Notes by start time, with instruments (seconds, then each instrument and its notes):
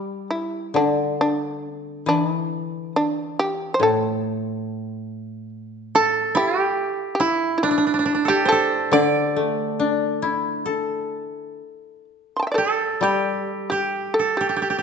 Already playing: koto G3, shamisen G4
0.30 shamisen E4
0.74 koto D3, shamisen D4
1.21 shamisen D4
1.74 shamisen C4
2.06 koto E3, shamisen D4
2.34 shamisen E4
2.96 shamisen D4
3.39 shamisen G4
3.74 shamisen C5
3.80 koto A2, shamisen A4
5.95 koto A4, shamisen A4
6.35 koto E4, shamisen G4
6.60 koto G4
7.15 shamisen G4
7.20 koto E4, shamisen E4
7.58 shamisen E4
7.63 shamisen D4, koto D4
7.71 koto D4
7.78 koto D4
7.87 koto D4
7.94 koto D4
7.99 koto D4
8.06 koto D4
8.15 koto D4
8.25 shamisen G4, koto A4
8.29 koto G4
8.45 shamisen A4, koto C5
8.52 koto A4
8.92 koto D3 D5, shamisen D5
9.36 koto A3
9.80 koto D4
10.03 shamisen D#5
10.22 koto E4
10.33 shamisen D5
10.66 koto A4, shamisen D#5
10.95 shamisen D5
12.37 shamisen A5 C6
12.43 shamisen G5
12.47 shamisen E5
12.52 shamisen A4 D5
12.58 koto A4
13.01 koto G3 G4, shamisen G4
13.70 shamisen G4, koto G4
14.14 shamisen A4
14.19 koto A4
14.37 shamisen G4, koto G4
14.49 koto G4
14.56 koto G4
14.62 koto G4
14.70 koto G4
14.78 koto G4